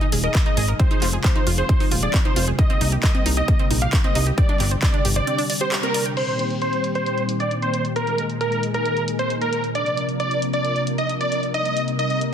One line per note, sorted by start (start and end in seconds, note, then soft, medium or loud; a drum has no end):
0.00 0.78 A#2 medium
0.00 0.78 D#3 medium
0.00 2.55 G#3 medium
0.00 2.55 D#4 medium
0.00 0.06 D#4 loud
0.00 0.78 G#4 medium
0.00 closed hi-hat soft
0.12 0.29 D#1 medium
0.12 0.20 G#4 medium
0.12 open hi-hat loud
0.24 0.28 A#4 medium
0.24 0.37 D#5 medium
0.24 closed hi-hat soft
0.35 0.42 A#3 medium
0.35 kick loud
0.35 clap loud
0.35 closed hi-hat medium
0.46 0.57 D#4 loud
0.46 0.67 D#5 loud
0.46 closed hi-hat soft
0.57 0.73 G#1 medium
0.57 0.62 G#4 loud
0.57 open hi-hat loud
0.68 0.73 A#4 medium
0.68 closed hi-hat soft
0.80 6.13 C3 medium
0.80 2.57 F3 medium
0.80 0.84 C4 medium
0.80 2.57 F4 medium
0.80 1.07 C5 loud
0.80 kick loud
0.80 closed hi-hat medium
0.91 0.95 D#4 loud
0.91 closed hi-hat soft
1.02 1.18 F1 loud
1.02 1.09 F4 medium
1.02 clap soft
1.02 open hi-hat loud
1.13 1.18 G#4 medium
1.13 closed hi-hat soft
1.24 1.32 C4 medium
1.24 1.45 C5 loud
1.24 kick loud
1.24 clap loud
1.24 closed hi-hat medium
1.36 1.46 D#4 loud
1.36 closed hi-hat soft
1.47 1.63 F1 medium
1.47 1.51 F4 loud
1.47 open hi-hat loud
1.58 1.62 G#4 medium
1.58 1.85 C5 loud
1.58 closed hi-hat soft
1.69 1.74 C4 medium
1.69 kick loud
1.69 closed hi-hat medium
1.80 1.85 D#4 loud
1.80 open hi-hat medium
1.91 2.08 D#1 medium
1.91 1.99 F4 medium
1.91 open hi-hat loud
2.03 2.07 G#4 medium
2.03 2.16 D5 medium
2.14 2.21 C4 medium
2.14 kick loud
2.14 clap loud
2.14 closed hi-hat medium
2.25 2.36 D#4 loud
2.25 2.46 C5 loud
2.25 closed hi-hat soft
2.36 2.52 F1 loud
2.36 2.41 F4 loud
2.36 open hi-hat loud
2.47 2.52 G#4 medium
2.47 closed hi-hat soft
2.58 6.13 G3 medium
2.58 4.36 A#3 medium
2.58 2.63 A#3 medium
2.58 4.36 D#4 medium
2.58 6.13 G4 medium
2.58 2.86 D#5 loud
2.58 kick loud
2.58 closed hi-hat medium
2.70 2.74 C4 loud
2.70 closed hi-hat soft
2.81 2.97 C2 loud
2.81 2.89 D#4 medium
2.81 open hi-hat loud
2.92 2.97 G4 medium
2.92 closed hi-hat soft
3.03 3.11 A#3 medium
3.03 3.24 D#5 loud
3.03 kick loud
3.03 clap loud
3.03 closed hi-hat medium
3.15 3.25 C4 loud
3.15 closed hi-hat soft
3.26 3.42 C2 medium
3.26 3.30 D#4 loud
3.26 open hi-hat loud
3.37 3.42 G4 medium
3.37 3.64 D#5 loud
3.37 closed hi-hat soft
3.48 3.53 A#3 medium
3.48 kick loud
3.48 closed hi-hat medium
3.59 3.64 C4 medium
3.59 closed hi-hat soft
3.71 3.87 A#1 medium
3.71 3.78 D#4 medium
3.71 open hi-hat loud
3.82 3.86 G4 medium
3.82 3.96 F5 medium
3.82 closed hi-hat soft
3.93 4.00 A#3 medium
3.93 kick loud
3.93 clap loud
3.93 closed hi-hat medium
4.04 4.15 C4 loud
4.04 4.25 D#5 medium
4.04 closed hi-hat soft
4.15 4.32 C2 loud
4.15 4.20 D#4 loud
4.15 open hi-hat medium
4.27 4.31 G4 medium
4.27 closed hi-hat soft
4.38 6.15 D3 medium
4.38 4.42 C4 medium
4.38 6.15 D4 medium
4.38 4.65 D5 loud
4.38 kick loud
4.38 closed hi-hat medium
4.49 4.53 D4 loud
4.49 closed hi-hat soft
4.60 4.76 G1 loud
4.60 4.68 G4 medium
4.60 clap soft
4.60 open hi-hat loud
4.71 4.76 C5 medium
4.71 closed hi-hat soft
4.82 4.90 C4 medium
4.82 5.03 D5 loud
4.82 kick loud
4.82 clap loud
4.82 closed hi-hat medium
4.94 5.04 D4 loud
4.94 closed hi-hat soft
5.05 5.21 G1 medium
5.05 5.09 G4 loud
5.05 open hi-hat loud
5.16 5.21 C5 medium
5.16 5.44 D5 loud
5.27 5.32 C4 medium
5.27 closed hi-hat medium
5.38 5.43 D4 loud
5.38 open hi-hat medium
5.50 5.60 D5 loud
5.50 open hi-hat loud
5.61 5.68 G4 medium
5.61 5.75 C5 medium
5.61 closed hi-hat soft
5.72 5.79 G4 medium
5.72 clap loud
5.72 closed hi-hat medium
5.83 5.91 C4 medium
5.83 6.04 A#4 loud
5.83 closed hi-hat soft
5.94 6.05 D5 medium
5.94 open hi-hat loud
6.06 6.13 G5 medium
6.06 closed hi-hat soft
6.17 9.72 A#2 medium
6.17 9.72 D#3 medium
6.17 7.94 G3 medium
6.17 7.94 C4 medium
6.17 7.94 G4 medium
6.17 6.44 C5 loud
6.17 closed hi-hat medium
6.17 crash medium
6.28 closed hi-hat soft
6.39 closed hi-hat medium
6.50 closed hi-hat soft
6.62 6.82 C5 medium
6.62 closed hi-hat medium
6.73 closed hi-hat soft
6.84 closed hi-hat medium
6.95 7.23 C5 loud
6.95 closed hi-hat soft
7.06 closed hi-hat medium
7.18 closed hi-hat soft
7.29 closed hi-hat medium
7.40 7.54 D5 medium
7.40 closed hi-hat soft
7.51 closed hi-hat medium
7.62 7.83 C5 medium
7.62 closed hi-hat soft
7.74 closed hi-hat medium
7.85 closed hi-hat soft
7.96 9.73 G#3 medium
7.96 9.73 D#4 medium
7.96 9.73 G#4 medium
7.96 8.23 A#4 loud
7.96 closed hi-hat medium
8.07 closed hi-hat soft
8.18 closed hi-hat medium
8.30 closed hi-hat soft
8.41 8.61 A#4 loud
8.41 closed hi-hat medium
8.52 closed hi-hat soft
8.63 closed hi-hat medium
8.74 9.02 A#4 loud
8.74 closed hi-hat soft
8.86 closed hi-hat medium
8.97 closed hi-hat soft
9.08 closed hi-hat medium
9.19 9.33 C5 medium
9.19 closed hi-hat soft
9.30 closed hi-hat medium
9.41 9.62 A#4 medium
9.41 closed hi-hat soft
9.53 closed hi-hat medium
9.64 closed hi-hat soft
9.75 11.52 C3 medium
9.75 11.52 F3 medium
9.75 12.34 A#3 medium
9.75 11.52 D4 medium
9.75 12.34 A#4 medium
9.75 10.03 D5 loud
9.75 closed hi-hat medium
9.86 closed hi-hat soft
9.97 closed hi-hat medium
10.09 closed hi-hat soft
10.20 10.40 D5 loud
10.20 closed hi-hat medium
10.31 closed hi-hat soft
10.42 closed hi-hat medium
10.53 10.81 D5 loud
10.53 closed hi-hat soft
10.65 closed hi-hat medium
10.76 closed hi-hat soft
10.87 closed hi-hat medium
10.98 11.12 D#5 medium
10.98 closed hi-hat soft
11.09 closed hi-hat medium
11.21 11.41 D5 loud
11.21 closed hi-hat soft
11.32 closed hi-hat medium
11.43 closed hi-hat soft
11.54 12.34 C3 medium
11.54 12.34 G3 medium
11.54 12.34 D#4 medium
11.54 11.82 D#5 loud
11.54 closed hi-hat medium
11.65 closed hi-hat soft
11.77 closed hi-hat medium
11.88 closed hi-hat soft
11.99 12.20 D#5 medium
11.99 closed hi-hat medium
12.10 closed hi-hat soft
12.21 closed hi-hat medium